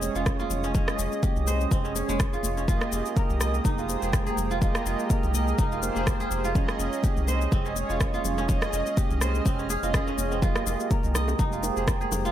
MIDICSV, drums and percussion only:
0, 0, Header, 1, 2, 480
1, 0, Start_track
1, 0, Key_signature, -4, "minor"
1, 0, Tempo, 483871
1, 741, Time_signature, 4, 2, 24, 8
1, 12218, End_track
2, 0, Start_track
2, 0, Title_t, "Drums"
2, 20, Note_on_c, 9, 82, 92
2, 24, Note_on_c, 9, 62, 53
2, 120, Note_off_c, 9, 82, 0
2, 123, Note_off_c, 9, 62, 0
2, 153, Note_on_c, 9, 82, 44
2, 252, Note_off_c, 9, 82, 0
2, 259, Note_on_c, 9, 37, 85
2, 260, Note_on_c, 9, 82, 50
2, 261, Note_on_c, 9, 36, 120
2, 264, Note_on_c, 9, 62, 41
2, 359, Note_off_c, 9, 37, 0
2, 359, Note_off_c, 9, 82, 0
2, 360, Note_off_c, 9, 36, 0
2, 363, Note_off_c, 9, 62, 0
2, 392, Note_on_c, 9, 82, 28
2, 395, Note_on_c, 9, 63, 64
2, 491, Note_off_c, 9, 82, 0
2, 494, Note_off_c, 9, 63, 0
2, 499, Note_on_c, 9, 82, 97
2, 503, Note_on_c, 9, 62, 48
2, 503, Note_on_c, 9, 64, 78
2, 598, Note_off_c, 9, 82, 0
2, 602, Note_off_c, 9, 62, 0
2, 602, Note_off_c, 9, 64, 0
2, 631, Note_on_c, 9, 82, 37
2, 731, Note_off_c, 9, 82, 0
2, 740, Note_on_c, 9, 82, 52
2, 741, Note_on_c, 9, 36, 119
2, 742, Note_on_c, 9, 63, 56
2, 742, Note_on_c, 9, 64, 94
2, 839, Note_off_c, 9, 82, 0
2, 840, Note_off_c, 9, 36, 0
2, 841, Note_off_c, 9, 63, 0
2, 841, Note_off_c, 9, 64, 0
2, 872, Note_on_c, 9, 37, 87
2, 873, Note_on_c, 9, 82, 26
2, 874, Note_on_c, 9, 63, 103
2, 876, Note_on_c, 9, 62, 50
2, 971, Note_off_c, 9, 37, 0
2, 972, Note_off_c, 9, 82, 0
2, 973, Note_off_c, 9, 63, 0
2, 975, Note_off_c, 9, 62, 0
2, 980, Note_on_c, 9, 82, 93
2, 1080, Note_off_c, 9, 82, 0
2, 1113, Note_on_c, 9, 62, 32
2, 1113, Note_on_c, 9, 82, 39
2, 1212, Note_off_c, 9, 62, 0
2, 1212, Note_off_c, 9, 82, 0
2, 1218, Note_on_c, 9, 63, 110
2, 1220, Note_on_c, 9, 36, 126
2, 1221, Note_on_c, 9, 82, 54
2, 1317, Note_off_c, 9, 63, 0
2, 1320, Note_off_c, 9, 36, 0
2, 1320, Note_off_c, 9, 82, 0
2, 1352, Note_on_c, 9, 64, 81
2, 1353, Note_on_c, 9, 62, 47
2, 1353, Note_on_c, 9, 82, 27
2, 1451, Note_off_c, 9, 64, 0
2, 1452, Note_off_c, 9, 62, 0
2, 1453, Note_off_c, 9, 82, 0
2, 1458, Note_on_c, 9, 63, 63
2, 1460, Note_on_c, 9, 82, 91
2, 1558, Note_off_c, 9, 63, 0
2, 1560, Note_off_c, 9, 82, 0
2, 1593, Note_on_c, 9, 82, 39
2, 1692, Note_off_c, 9, 82, 0
2, 1700, Note_on_c, 9, 36, 123
2, 1701, Note_on_c, 9, 82, 52
2, 1800, Note_off_c, 9, 36, 0
2, 1801, Note_off_c, 9, 82, 0
2, 1834, Note_on_c, 9, 82, 24
2, 1933, Note_off_c, 9, 82, 0
2, 1940, Note_on_c, 9, 62, 53
2, 1942, Note_on_c, 9, 82, 85
2, 2039, Note_off_c, 9, 62, 0
2, 2041, Note_off_c, 9, 82, 0
2, 2068, Note_on_c, 9, 63, 56
2, 2074, Note_on_c, 9, 82, 43
2, 2167, Note_off_c, 9, 63, 0
2, 2173, Note_off_c, 9, 82, 0
2, 2180, Note_on_c, 9, 37, 83
2, 2181, Note_on_c, 9, 36, 119
2, 2181, Note_on_c, 9, 82, 52
2, 2279, Note_off_c, 9, 37, 0
2, 2280, Note_off_c, 9, 36, 0
2, 2280, Note_off_c, 9, 82, 0
2, 2313, Note_on_c, 9, 82, 28
2, 2411, Note_on_c, 9, 63, 94
2, 2412, Note_off_c, 9, 82, 0
2, 2420, Note_on_c, 9, 62, 49
2, 2421, Note_on_c, 9, 82, 92
2, 2510, Note_off_c, 9, 63, 0
2, 2519, Note_off_c, 9, 62, 0
2, 2520, Note_off_c, 9, 82, 0
2, 2553, Note_on_c, 9, 82, 36
2, 2652, Note_off_c, 9, 82, 0
2, 2657, Note_on_c, 9, 63, 59
2, 2660, Note_on_c, 9, 36, 113
2, 2660, Note_on_c, 9, 64, 98
2, 2662, Note_on_c, 9, 82, 52
2, 2756, Note_off_c, 9, 63, 0
2, 2759, Note_off_c, 9, 36, 0
2, 2759, Note_off_c, 9, 64, 0
2, 2761, Note_off_c, 9, 82, 0
2, 2785, Note_on_c, 9, 62, 47
2, 2785, Note_on_c, 9, 63, 104
2, 2792, Note_on_c, 9, 37, 82
2, 2793, Note_on_c, 9, 82, 26
2, 2884, Note_off_c, 9, 62, 0
2, 2885, Note_off_c, 9, 63, 0
2, 2891, Note_off_c, 9, 37, 0
2, 2892, Note_off_c, 9, 82, 0
2, 2900, Note_on_c, 9, 82, 87
2, 2999, Note_off_c, 9, 82, 0
2, 3032, Note_on_c, 9, 82, 37
2, 3039, Note_on_c, 9, 62, 35
2, 3131, Note_off_c, 9, 82, 0
2, 3139, Note_off_c, 9, 62, 0
2, 3140, Note_on_c, 9, 36, 117
2, 3140, Note_on_c, 9, 82, 52
2, 3147, Note_on_c, 9, 63, 88
2, 3239, Note_off_c, 9, 36, 0
2, 3239, Note_off_c, 9, 82, 0
2, 3246, Note_off_c, 9, 63, 0
2, 3272, Note_on_c, 9, 82, 27
2, 3275, Note_on_c, 9, 64, 81
2, 3278, Note_on_c, 9, 62, 45
2, 3371, Note_off_c, 9, 82, 0
2, 3374, Note_off_c, 9, 64, 0
2, 3377, Note_off_c, 9, 62, 0
2, 3377, Note_on_c, 9, 63, 54
2, 3379, Note_on_c, 9, 37, 74
2, 3380, Note_on_c, 9, 82, 92
2, 3476, Note_off_c, 9, 63, 0
2, 3478, Note_off_c, 9, 37, 0
2, 3479, Note_off_c, 9, 82, 0
2, 3512, Note_on_c, 9, 82, 38
2, 3611, Note_off_c, 9, 82, 0
2, 3612, Note_on_c, 9, 62, 35
2, 3620, Note_on_c, 9, 36, 113
2, 3621, Note_on_c, 9, 82, 49
2, 3626, Note_on_c, 9, 64, 67
2, 3629, Note_on_c, 9, 63, 55
2, 3711, Note_off_c, 9, 62, 0
2, 3719, Note_off_c, 9, 36, 0
2, 3720, Note_off_c, 9, 82, 0
2, 3725, Note_off_c, 9, 64, 0
2, 3728, Note_off_c, 9, 63, 0
2, 3753, Note_on_c, 9, 82, 25
2, 3852, Note_off_c, 9, 82, 0
2, 3861, Note_on_c, 9, 82, 91
2, 3863, Note_on_c, 9, 62, 51
2, 3960, Note_off_c, 9, 82, 0
2, 3962, Note_off_c, 9, 62, 0
2, 3992, Note_on_c, 9, 82, 40
2, 4091, Note_off_c, 9, 82, 0
2, 4100, Note_on_c, 9, 36, 114
2, 4100, Note_on_c, 9, 37, 84
2, 4101, Note_on_c, 9, 82, 49
2, 4104, Note_on_c, 9, 62, 35
2, 4199, Note_off_c, 9, 37, 0
2, 4200, Note_off_c, 9, 36, 0
2, 4200, Note_off_c, 9, 82, 0
2, 4203, Note_off_c, 9, 62, 0
2, 4233, Note_on_c, 9, 82, 27
2, 4237, Note_on_c, 9, 63, 66
2, 4332, Note_off_c, 9, 82, 0
2, 4335, Note_on_c, 9, 62, 44
2, 4336, Note_off_c, 9, 63, 0
2, 4341, Note_on_c, 9, 64, 73
2, 4342, Note_on_c, 9, 82, 91
2, 4434, Note_off_c, 9, 62, 0
2, 4440, Note_off_c, 9, 64, 0
2, 4441, Note_off_c, 9, 82, 0
2, 4473, Note_on_c, 9, 82, 38
2, 4572, Note_off_c, 9, 82, 0
2, 4575, Note_on_c, 9, 63, 61
2, 4580, Note_on_c, 9, 36, 110
2, 4581, Note_on_c, 9, 82, 50
2, 4586, Note_on_c, 9, 64, 94
2, 4674, Note_off_c, 9, 63, 0
2, 4680, Note_off_c, 9, 36, 0
2, 4681, Note_off_c, 9, 82, 0
2, 4685, Note_off_c, 9, 64, 0
2, 4711, Note_on_c, 9, 63, 103
2, 4712, Note_on_c, 9, 37, 84
2, 4713, Note_on_c, 9, 82, 24
2, 4716, Note_on_c, 9, 62, 50
2, 4810, Note_off_c, 9, 63, 0
2, 4811, Note_off_c, 9, 37, 0
2, 4812, Note_off_c, 9, 82, 0
2, 4815, Note_off_c, 9, 62, 0
2, 4821, Note_on_c, 9, 82, 87
2, 4920, Note_off_c, 9, 82, 0
2, 4953, Note_on_c, 9, 62, 37
2, 4953, Note_on_c, 9, 82, 36
2, 5052, Note_off_c, 9, 62, 0
2, 5052, Note_off_c, 9, 82, 0
2, 5060, Note_on_c, 9, 63, 90
2, 5060, Note_on_c, 9, 82, 52
2, 5061, Note_on_c, 9, 36, 113
2, 5159, Note_off_c, 9, 63, 0
2, 5160, Note_off_c, 9, 36, 0
2, 5160, Note_off_c, 9, 82, 0
2, 5191, Note_on_c, 9, 62, 52
2, 5193, Note_on_c, 9, 64, 78
2, 5194, Note_on_c, 9, 82, 27
2, 5290, Note_off_c, 9, 62, 0
2, 5292, Note_off_c, 9, 64, 0
2, 5293, Note_off_c, 9, 82, 0
2, 5299, Note_on_c, 9, 63, 60
2, 5300, Note_on_c, 9, 82, 90
2, 5398, Note_off_c, 9, 63, 0
2, 5399, Note_off_c, 9, 82, 0
2, 5433, Note_on_c, 9, 82, 37
2, 5532, Note_off_c, 9, 82, 0
2, 5541, Note_on_c, 9, 36, 117
2, 5541, Note_on_c, 9, 82, 48
2, 5640, Note_off_c, 9, 36, 0
2, 5640, Note_off_c, 9, 82, 0
2, 5673, Note_on_c, 9, 82, 25
2, 5772, Note_off_c, 9, 82, 0
2, 5780, Note_on_c, 9, 82, 89
2, 5781, Note_on_c, 9, 62, 56
2, 5880, Note_off_c, 9, 82, 0
2, 5881, Note_off_c, 9, 62, 0
2, 5901, Note_on_c, 9, 63, 56
2, 5912, Note_on_c, 9, 82, 39
2, 6000, Note_off_c, 9, 63, 0
2, 6012, Note_off_c, 9, 82, 0
2, 6020, Note_on_c, 9, 37, 85
2, 6021, Note_on_c, 9, 36, 110
2, 6021, Note_on_c, 9, 82, 46
2, 6022, Note_on_c, 9, 62, 38
2, 6119, Note_off_c, 9, 37, 0
2, 6120, Note_off_c, 9, 36, 0
2, 6120, Note_off_c, 9, 82, 0
2, 6121, Note_off_c, 9, 62, 0
2, 6153, Note_on_c, 9, 82, 25
2, 6252, Note_off_c, 9, 82, 0
2, 6257, Note_on_c, 9, 63, 79
2, 6260, Note_on_c, 9, 82, 91
2, 6264, Note_on_c, 9, 62, 50
2, 6356, Note_off_c, 9, 63, 0
2, 6360, Note_off_c, 9, 82, 0
2, 6363, Note_off_c, 9, 62, 0
2, 6392, Note_on_c, 9, 82, 37
2, 6491, Note_off_c, 9, 82, 0
2, 6500, Note_on_c, 9, 64, 102
2, 6500, Note_on_c, 9, 82, 48
2, 6501, Note_on_c, 9, 36, 112
2, 6506, Note_on_c, 9, 63, 62
2, 6599, Note_off_c, 9, 64, 0
2, 6600, Note_off_c, 9, 36, 0
2, 6600, Note_off_c, 9, 82, 0
2, 6606, Note_off_c, 9, 63, 0
2, 6632, Note_on_c, 9, 37, 82
2, 6633, Note_on_c, 9, 62, 48
2, 6633, Note_on_c, 9, 63, 94
2, 6633, Note_on_c, 9, 82, 24
2, 6731, Note_off_c, 9, 37, 0
2, 6732, Note_off_c, 9, 62, 0
2, 6732, Note_off_c, 9, 63, 0
2, 6732, Note_off_c, 9, 82, 0
2, 6741, Note_on_c, 9, 82, 83
2, 6840, Note_off_c, 9, 82, 0
2, 6865, Note_on_c, 9, 62, 36
2, 6873, Note_on_c, 9, 82, 35
2, 6964, Note_off_c, 9, 62, 0
2, 6971, Note_on_c, 9, 63, 86
2, 6972, Note_off_c, 9, 82, 0
2, 6981, Note_on_c, 9, 36, 109
2, 6982, Note_on_c, 9, 82, 50
2, 7070, Note_off_c, 9, 63, 0
2, 7080, Note_off_c, 9, 36, 0
2, 7081, Note_off_c, 9, 82, 0
2, 7110, Note_on_c, 9, 62, 53
2, 7112, Note_on_c, 9, 64, 82
2, 7113, Note_on_c, 9, 82, 25
2, 7209, Note_off_c, 9, 62, 0
2, 7211, Note_off_c, 9, 64, 0
2, 7213, Note_off_c, 9, 82, 0
2, 7217, Note_on_c, 9, 63, 60
2, 7221, Note_on_c, 9, 82, 87
2, 7317, Note_off_c, 9, 63, 0
2, 7320, Note_off_c, 9, 82, 0
2, 7353, Note_on_c, 9, 82, 38
2, 7452, Note_off_c, 9, 82, 0
2, 7453, Note_on_c, 9, 63, 51
2, 7460, Note_on_c, 9, 64, 79
2, 7461, Note_on_c, 9, 36, 112
2, 7461, Note_on_c, 9, 82, 49
2, 7464, Note_on_c, 9, 62, 40
2, 7553, Note_off_c, 9, 63, 0
2, 7559, Note_off_c, 9, 64, 0
2, 7560, Note_off_c, 9, 36, 0
2, 7560, Note_off_c, 9, 82, 0
2, 7563, Note_off_c, 9, 62, 0
2, 7593, Note_on_c, 9, 82, 24
2, 7692, Note_off_c, 9, 82, 0
2, 7701, Note_on_c, 9, 62, 53
2, 7701, Note_on_c, 9, 82, 82
2, 7800, Note_off_c, 9, 62, 0
2, 7800, Note_off_c, 9, 82, 0
2, 7834, Note_on_c, 9, 82, 39
2, 7933, Note_off_c, 9, 82, 0
2, 7936, Note_on_c, 9, 62, 35
2, 7941, Note_on_c, 9, 36, 110
2, 7941, Note_on_c, 9, 37, 87
2, 7942, Note_on_c, 9, 82, 47
2, 8035, Note_off_c, 9, 62, 0
2, 8040, Note_off_c, 9, 36, 0
2, 8040, Note_off_c, 9, 37, 0
2, 8041, Note_off_c, 9, 82, 0
2, 8064, Note_on_c, 9, 63, 60
2, 8074, Note_on_c, 9, 82, 25
2, 8164, Note_off_c, 9, 63, 0
2, 8173, Note_off_c, 9, 82, 0
2, 8182, Note_on_c, 9, 64, 82
2, 8182, Note_on_c, 9, 82, 84
2, 8186, Note_on_c, 9, 62, 53
2, 8281, Note_off_c, 9, 64, 0
2, 8281, Note_off_c, 9, 82, 0
2, 8285, Note_off_c, 9, 62, 0
2, 8314, Note_on_c, 9, 82, 36
2, 8413, Note_off_c, 9, 82, 0
2, 8417, Note_on_c, 9, 64, 110
2, 8419, Note_on_c, 9, 63, 59
2, 8421, Note_on_c, 9, 36, 116
2, 8422, Note_on_c, 9, 82, 50
2, 8516, Note_off_c, 9, 64, 0
2, 8518, Note_off_c, 9, 63, 0
2, 8520, Note_off_c, 9, 36, 0
2, 8521, Note_off_c, 9, 82, 0
2, 8544, Note_on_c, 9, 63, 89
2, 8551, Note_on_c, 9, 62, 56
2, 8553, Note_on_c, 9, 37, 85
2, 8554, Note_on_c, 9, 82, 25
2, 8643, Note_off_c, 9, 63, 0
2, 8650, Note_off_c, 9, 62, 0
2, 8652, Note_off_c, 9, 37, 0
2, 8653, Note_off_c, 9, 82, 0
2, 8661, Note_on_c, 9, 82, 85
2, 8760, Note_off_c, 9, 82, 0
2, 8792, Note_on_c, 9, 82, 35
2, 8795, Note_on_c, 9, 62, 36
2, 8891, Note_off_c, 9, 82, 0
2, 8894, Note_off_c, 9, 62, 0
2, 8897, Note_on_c, 9, 63, 101
2, 8901, Note_on_c, 9, 36, 114
2, 8901, Note_on_c, 9, 82, 51
2, 8996, Note_off_c, 9, 63, 0
2, 9000, Note_off_c, 9, 36, 0
2, 9000, Note_off_c, 9, 82, 0
2, 9032, Note_on_c, 9, 62, 56
2, 9033, Note_on_c, 9, 64, 81
2, 9033, Note_on_c, 9, 82, 27
2, 9131, Note_off_c, 9, 62, 0
2, 9132, Note_off_c, 9, 64, 0
2, 9132, Note_off_c, 9, 82, 0
2, 9132, Note_on_c, 9, 63, 60
2, 9140, Note_on_c, 9, 37, 79
2, 9140, Note_on_c, 9, 82, 83
2, 9231, Note_off_c, 9, 63, 0
2, 9239, Note_off_c, 9, 37, 0
2, 9240, Note_off_c, 9, 82, 0
2, 9273, Note_on_c, 9, 82, 38
2, 9372, Note_off_c, 9, 82, 0
2, 9376, Note_on_c, 9, 62, 40
2, 9381, Note_on_c, 9, 36, 111
2, 9382, Note_on_c, 9, 82, 49
2, 9475, Note_off_c, 9, 62, 0
2, 9480, Note_off_c, 9, 36, 0
2, 9481, Note_off_c, 9, 82, 0
2, 9513, Note_on_c, 9, 82, 24
2, 9612, Note_off_c, 9, 82, 0
2, 9614, Note_on_c, 9, 62, 54
2, 9620, Note_on_c, 9, 82, 86
2, 9713, Note_off_c, 9, 62, 0
2, 9719, Note_off_c, 9, 82, 0
2, 9753, Note_on_c, 9, 63, 52
2, 9754, Note_on_c, 9, 82, 39
2, 9853, Note_off_c, 9, 63, 0
2, 9853, Note_off_c, 9, 82, 0
2, 9856, Note_on_c, 9, 62, 38
2, 9860, Note_on_c, 9, 37, 90
2, 9861, Note_on_c, 9, 36, 107
2, 9861, Note_on_c, 9, 82, 49
2, 9955, Note_off_c, 9, 62, 0
2, 9960, Note_off_c, 9, 36, 0
2, 9960, Note_off_c, 9, 37, 0
2, 9961, Note_off_c, 9, 82, 0
2, 9994, Note_on_c, 9, 82, 27
2, 10093, Note_off_c, 9, 82, 0
2, 10096, Note_on_c, 9, 63, 92
2, 10102, Note_on_c, 9, 82, 90
2, 10105, Note_on_c, 9, 62, 53
2, 10195, Note_off_c, 9, 63, 0
2, 10201, Note_off_c, 9, 82, 0
2, 10204, Note_off_c, 9, 62, 0
2, 10234, Note_on_c, 9, 82, 35
2, 10333, Note_off_c, 9, 82, 0
2, 10338, Note_on_c, 9, 63, 56
2, 10340, Note_on_c, 9, 36, 125
2, 10342, Note_on_c, 9, 82, 50
2, 10347, Note_on_c, 9, 61, 89
2, 10348, Note_on_c, 9, 64, 104
2, 10438, Note_off_c, 9, 63, 0
2, 10439, Note_off_c, 9, 36, 0
2, 10441, Note_off_c, 9, 82, 0
2, 10446, Note_off_c, 9, 61, 0
2, 10447, Note_off_c, 9, 64, 0
2, 10468, Note_on_c, 9, 62, 45
2, 10472, Note_on_c, 9, 37, 91
2, 10473, Note_on_c, 9, 82, 26
2, 10478, Note_on_c, 9, 63, 93
2, 10567, Note_off_c, 9, 62, 0
2, 10571, Note_off_c, 9, 37, 0
2, 10572, Note_off_c, 9, 82, 0
2, 10577, Note_off_c, 9, 63, 0
2, 10581, Note_on_c, 9, 82, 91
2, 10589, Note_on_c, 9, 61, 57
2, 10680, Note_off_c, 9, 82, 0
2, 10688, Note_off_c, 9, 61, 0
2, 10713, Note_on_c, 9, 82, 38
2, 10721, Note_on_c, 9, 62, 35
2, 10813, Note_off_c, 9, 82, 0
2, 10820, Note_on_c, 9, 36, 116
2, 10820, Note_on_c, 9, 61, 83
2, 10821, Note_off_c, 9, 62, 0
2, 10821, Note_on_c, 9, 82, 52
2, 10823, Note_on_c, 9, 63, 104
2, 10919, Note_off_c, 9, 61, 0
2, 10920, Note_off_c, 9, 36, 0
2, 10920, Note_off_c, 9, 82, 0
2, 10922, Note_off_c, 9, 63, 0
2, 10944, Note_on_c, 9, 64, 81
2, 10953, Note_on_c, 9, 82, 27
2, 10960, Note_on_c, 9, 62, 53
2, 11043, Note_off_c, 9, 64, 0
2, 11052, Note_off_c, 9, 82, 0
2, 11059, Note_off_c, 9, 62, 0
2, 11061, Note_on_c, 9, 37, 80
2, 11062, Note_on_c, 9, 82, 92
2, 11064, Note_on_c, 9, 63, 52
2, 11065, Note_on_c, 9, 61, 83
2, 11160, Note_off_c, 9, 37, 0
2, 11161, Note_off_c, 9, 82, 0
2, 11163, Note_off_c, 9, 63, 0
2, 11164, Note_off_c, 9, 61, 0
2, 11190, Note_on_c, 9, 60, 97
2, 11193, Note_on_c, 9, 82, 39
2, 11289, Note_off_c, 9, 60, 0
2, 11292, Note_off_c, 9, 82, 0
2, 11297, Note_on_c, 9, 63, 57
2, 11300, Note_on_c, 9, 36, 109
2, 11300, Note_on_c, 9, 82, 50
2, 11301, Note_on_c, 9, 61, 58
2, 11302, Note_on_c, 9, 62, 37
2, 11308, Note_on_c, 9, 64, 86
2, 11396, Note_off_c, 9, 63, 0
2, 11400, Note_off_c, 9, 36, 0
2, 11400, Note_off_c, 9, 61, 0
2, 11400, Note_off_c, 9, 82, 0
2, 11401, Note_off_c, 9, 62, 0
2, 11407, Note_off_c, 9, 64, 0
2, 11432, Note_on_c, 9, 82, 25
2, 11531, Note_off_c, 9, 82, 0
2, 11539, Note_on_c, 9, 61, 77
2, 11540, Note_on_c, 9, 82, 83
2, 11541, Note_on_c, 9, 62, 56
2, 11638, Note_off_c, 9, 61, 0
2, 11639, Note_off_c, 9, 82, 0
2, 11640, Note_off_c, 9, 62, 0
2, 11674, Note_on_c, 9, 82, 39
2, 11773, Note_off_c, 9, 82, 0
2, 11780, Note_on_c, 9, 62, 38
2, 11781, Note_on_c, 9, 36, 116
2, 11781, Note_on_c, 9, 37, 95
2, 11782, Note_on_c, 9, 82, 51
2, 11786, Note_on_c, 9, 61, 88
2, 11879, Note_off_c, 9, 62, 0
2, 11880, Note_off_c, 9, 36, 0
2, 11880, Note_off_c, 9, 37, 0
2, 11881, Note_off_c, 9, 82, 0
2, 11885, Note_off_c, 9, 61, 0
2, 11911, Note_on_c, 9, 63, 62
2, 11915, Note_on_c, 9, 82, 27
2, 12011, Note_off_c, 9, 63, 0
2, 12015, Note_off_c, 9, 82, 0
2, 12020, Note_on_c, 9, 62, 51
2, 12020, Note_on_c, 9, 64, 87
2, 12022, Note_on_c, 9, 82, 92
2, 12023, Note_on_c, 9, 61, 65
2, 12024, Note_on_c, 9, 60, 78
2, 12119, Note_off_c, 9, 62, 0
2, 12119, Note_off_c, 9, 64, 0
2, 12122, Note_off_c, 9, 82, 0
2, 12123, Note_off_c, 9, 61, 0
2, 12124, Note_off_c, 9, 60, 0
2, 12154, Note_on_c, 9, 82, 38
2, 12218, Note_off_c, 9, 82, 0
2, 12218, End_track
0, 0, End_of_file